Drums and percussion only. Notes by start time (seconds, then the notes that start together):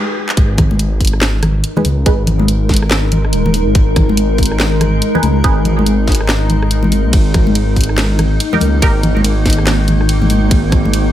0.29 clap
0.37 kick, closed hi-hat
0.58 kick, cross-stick, closed hi-hat, low conga
0.71 high conga
0.79 closed hi-hat
1.00 kick, open hi-hat
1.05 closed hi-hat
1.07 closed hi-hat
1.13 cross-stick
1.21 snare, clap
1.43 cross-stick, closed hi-hat, low conga
1.64 closed hi-hat
1.76 high conga, low conga
1.85 open hi-hat, high conga
2.06 kick, closed hi-hat
2.27 closed hi-hat, low conga
2.39 high conga
2.48 closed hi-hat
2.69 kick, snare, open hi-hat
2.74 closed hi-hat
2.77 closed hi-hat
2.82 cross-stick
2.91 snare, clap
3.12 closed hi-hat, low conga
3.25 cross-stick
3.33 closed hi-hat
3.46 high conga, low conga
3.54 open hi-hat, high conga
3.75 kick, closed hi-hat
3.96 kick, cross-stick, closed hi-hat, low conga
4.09 high conga
4.17 closed hi-hat
4.38 kick, open hi-hat
4.43 closed hi-hat
4.46 closed hi-hat
4.52 cross-stick
4.60 snare, clap
4.81 cross-stick, closed hi-hat, low conga
5.02 closed hi-hat
5.15 high conga, low conga
5.23 open hi-hat, high conga
5.44 kick, closed hi-hat
5.65 closed hi-hat, low conga
5.79 high conga
5.86 closed hi-hat
6.07 kick, snare, open hi-hat
6.12 closed hi-hat
6.15 closed hi-hat
6.20 cross-stick
6.29 snare, clap
6.50 closed hi-hat, low conga
6.62 cross-stick
6.71 closed hi-hat
6.83 high conga, low conga
6.92 open hi-hat, high conga
7.13 kick, closed hi-hat, ride
7.34 kick, cross-stick, closed hi-hat, low conga
7.47 high conga
7.55 closed hi-hat, ride
7.76 kick, open hi-hat
7.81 closed hi-hat
7.84 closed hi-hat
7.89 cross-stick
7.98 snare, clap, ride
8.19 cross-stick, closed hi-hat, low conga
8.40 closed hi-hat, ride
8.53 high conga, low conga
8.61 open hi-hat, high conga
8.82 kick, closed hi-hat, ride
9.03 closed hi-hat, low conga
9.17 high conga
9.24 closed hi-hat, ride
9.46 kick, snare, open hi-hat
9.50 closed hi-hat
9.53 closed hi-hat
9.58 cross-stick
9.67 snare, clap, ride
9.88 closed hi-hat, low conga
10.01 cross-stick
10.09 closed hi-hat, ride
10.22 high conga, low conga
10.30 open hi-hat, high conga
10.51 kick, closed hi-hat, ride
10.72 kick, cross-stick, closed hi-hat, low conga
10.85 high conga
10.93 closed hi-hat, ride